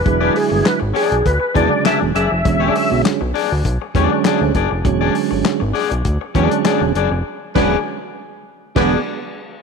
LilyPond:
<<
  \new Staff \with { instrumentName = "Tonewheel organ" } { \time 4/4 \key e \mixolydian \tempo 4 = 100 b'8 gis'8 b'8 gis'8 b'8 d''8 e''8 e''8~ | e''4 r2. | r1 | r1 | }
  \new Staff \with { instrumentName = "Clean electric guitar" } { \time 4/4 \key e \mixolydian r16 <d' gis' d''>16 r4 <d' gis' d''>16 r8. <d' gis' d''>16 r16 <d' gis' d''>16 r16 <d' gis' d''>16 r16 | r16 <d' gis' d''>16 r4 <d' gis' d''>16 r8. <d' gis' d''>16 r16 <d' gis' d''>16 r16 <d' gis' d''>16 r16 | r16 <d' gis' d''>16 r4 <d' gis' d''>16 r8. <d' gis' d''>16 r16 <d' gis' d''>16 r16 <d' gis' d''>16 r16 | r8 <d' gis' d''>8 r4. <d' gis' d''>8 r4 | }
  \new Staff \with { instrumentName = "Horn section" } { \time 4/4 \key e \mixolydian r1 | r1 | r1 | r8 <fis' gis' b'>8 r4. <fis' gis' b'>8 r4 | }
  \new Staff \with { instrumentName = "Tonewheel organ" } { \clef bass \time 4/4 \key e \mixolydian <d fis gis e'>4~ <d fis gis e'>16 r4 r16 <cis d fis gis>4 r8 | <d fis gis cis'>4~ <d fis gis cis'>16 r4 r16 <d fis gis b cis'>4 r8 | <d fis gis cis'>4~ <d fis gis cis'>16 r4 r16 <d fis gis cis'>4 r8 | r8 <d fis gis cis'>8 r4. <d fis gis b>8 r4 | }
  \new Staff \with { instrumentName = "Analog synth bass" } { \clef bass \time 4/4 \key e \mixolydian e,,8 r16 g,,16 r16 gis,,16 r16 b,,16 d,16 r16 e,16 r8 e,,16 fis,,16 f,,16 | e,,8 r16 b,,16 r16 b,,16 r16 d,16 b,,16 r16 e,16 r8 d,16 fis,,16 f,,16 | e,,8 r16 g,,16 r16 gis,,16 r16 b,,16 d,16 r16 e,16 r8 e,,16 fis,,16 f,,16 | r8 e,,8 r4. e,,8 r4 | }
  \new DrumStaff \with { instrumentName = "Drums" } \drummode { \time 4/4 <hh bd>8 hho8 <hc hh sn>8 hho16 hh16 <hh bd>8 <hh bd>8 <hc hh sn>8 hh8 | <hh bd>8 hho8 <hc hh sn>8 hho8 <hh bd>8 <hh bd>8 <hc hh sn>8 <hh bd>8 | <hh bd>8 hho8 <hc hh sn>8 hho16 hh16 <hh bd>8 <hh bd>16 hh16 <hc hh sn>8 hh8 | r8 <cymc bd sn>8 r4 r8 <cymc bd sn>8 r4 | }
>>